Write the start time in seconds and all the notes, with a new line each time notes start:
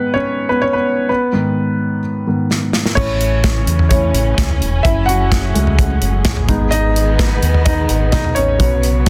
Already playing: G#2 D#3 G#3 B3 B4
0.14 C#4 C#5
0.49 B3 B4
0.62 C#4 C#5
0.73 B3 B4
1.09 B3 B4
1.32 G#2 D#3 B3
2.27 G#2 D#3 B3
2.51 snare
2.73 snare
2.86 snare
2.95 A1 C#3 E3 A3 C#4 E4 C#5, kick, crash
3.21 closed hi-hat
3.44 kick, snare, closed hi-hat
3.67 E2, closed hi-hat
3.79 floor tom
3.89 A3 C#4 E4 C#5, kick, closed hi-hat
4.14 A1, closed hi-hat
4.38 C#2, kick, snare, closed hi-hat
4.50 floor tom
4.62 E1, closed hi-hat
4.83 F#1 F#3 E4 G#4 E5, kick, closed hi-hat
5.06 F#4 F#5, closed hi-hat
5.32 kick, snare, closed hi-hat
5.54 C#2 G#3 A3 F#4, closed hi-hat
5.67 floor tom
5.79 kick, closed hi-hat
6.01 F#1, closed hi-hat
6.25 A1, kick, snare, closed hi-hat
6.37 floor tom
6.47 D#3 G#3 B3 D#4, kick, closed hi-hat
6.71 D#4 D#5, closed hi-hat
6.96 closed hi-hat
7.19 kick, snare, closed hi-hat
7.42 D#2, closed hi-hat
7.54 floor tom
7.65 D#4 D#5, kick, closed hi-hat
7.89 G#1, closed hi-hat
8.12 B1 D#4 D#5, kick, snare, closed hi-hat
8.24 floor tom
8.35 A1 C#4 C#5, closed hi-hat
8.58 B1 C#3 F#3 B3 C#4, kick, closed hi-hat
8.83 closed hi-hat